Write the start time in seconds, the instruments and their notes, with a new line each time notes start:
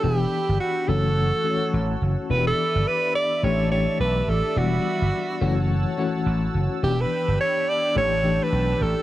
Already playing: analog synth pad D4 E6
0.03 slap bass E1, fm electric piano E3 B3 D4 G4, alto saxophone G4, analog synth pad G5 B5
0.49 slap bass G1
0.60 alto saxophone F#4
0.88 slap bass F#1, fm electric piano E3 A3 C#4 F#4, alto saxophone A4, analog synth pad C#5 F#5 A5
1.44 fm electric piano E3 A3 C#4 F#4
1.73 slap bass A1
2.02 slap bass F#1
2.29 slap bass E1, fm electric piano E3 B3 D4 F#4, alto saxophone B4, analog synth pad D5 E5 B5
2.37 fm electric piano G4
2.47 alto saxophone A4
2.75 slap bass G1
2.88 alto saxophone B4
3.16 alto saxophone D5
3.42 slap bass A1, fm electric piano E3 A3 D4 G4, alto saxophone C#5, analog synth pad D5 A5 E6
3.71 fm electric piano E3 A3 D4 G4, alto saxophone C#5
4.00 slap bass B1, alto saxophone B4
4.28 slap bass A1, alto saxophone A4
4.55 slap bass E1, fm electric piano E3 B3 D4 F#4, alto saxophone F#4, analog synth pad B5
4.64 fm electric piano G3
5.02 slap bass G1
5.41 slap bass F#1, fm electric piano E3 A3 C#4 F#4, analog synth pad C#5 F#5 A5
5.98 fm electric piano E3 A3 C#4 F#4
6.26 slap bass A1
6.54 slap bass F#1
6.82 slap bass E1, fm electric piano E3 B3 D4 G4, analog synth pad D4 G5 B5, alto saxophone G4
7.01 alto saxophone B4
7.28 slap bass G1
7.41 alto saxophone C#5
7.69 alto saxophone D5
7.96 slap bass A1, fm electric piano E3 A3 D4 G4, alto saxophone C#5, analog synth pad G5 A5
8.23 fm electric piano E3 A3 D4 G4
8.43 alto saxophone B4
8.52 slap bass B1
8.81 slap bass A1, alto saxophone A4